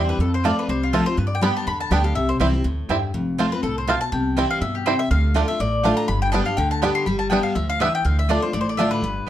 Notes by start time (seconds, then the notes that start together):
Already playing: E2 G2 E3 G3 C4 E4
0.09 B4
0.19 F2 A4
0.34 C5
0.44 F3 A3 C4 F4 C5 D5 A5
0.59 B4
0.68 C2 C3 C5
0.83 F4
0.93 F3 A3 C4 F4 A4 C5 A5
1.06 C4 F4 C5
1.17 G2 B4
1.27 D5
1.35 G5
1.41 G3 B3 D4 G4 D5 G5 B5
1.56 A5
1.67 E2 D3 B5
1.80 A5
1.91 D2 G3 B3 D4 G4 D5 G5
2.04 D4 G4 F5
2.15 C2 C3 E5
2.29 C5
2.40 C2 E3 G3 C4 E4 C5 G5
2.53 C4 E4
2.64 D2 A2
2.89 E2 G2 G3 C4 E4 C5 G5
3.14 F1 F2
3.38 F3 A3 C4 F4 C5 A5
3.52 C4 F4 B4
3.63 C2 A2 A4
3.78 C5
3.87 B2 A3 C4 F4 C5 F5 A5
4.01 A5
4.12 C2 C3 G5
4.37 E3 G3 C4 E4 C5 G5
4.51 F5
4.61 G2 B2 E5
4.75 G4
4.86 C3 G3 C4 E4 C5 G5
4.99 E5
5.11 D2 D3 F5
5.34 D3 A3 D4 F4 D5 A5
5.48 D4 F4 E5
5.60 A1 A2 D5
5.83 D3 A3 D4 F4 D5 A5
5.97 A#5
6.08 G1 G2 B5
6.22 G5
6.32 G3 B3 D4 G4 D5 G5 A5
6.46 D4 G4 F5
6.57 D2 D3 G5
6.71 A5
6.82 G3 B3 D4 G4 D5 G5 B5
6.95 C6
7.06 G1 G3 B5
7.19 A5
7.30 G3 B3 D4 E4 B4 G5
7.43 F5
7.55 D2 F3 E5
7.70 F5
7.79 E3 G3 B3 D4 E4 B4 E5 G5
7.95 G5
8.05 D2 D3 F5
8.19 E5
8.29 D3 A3 D4 F4 D5 A5
8.42 D4 F4 C5
8.53 A1 A2 D5
8.61 C5
8.69 D5
8.77 D3 A3 D4 F4 D5 E5 A5
8.91 B4
9.02 G1 G2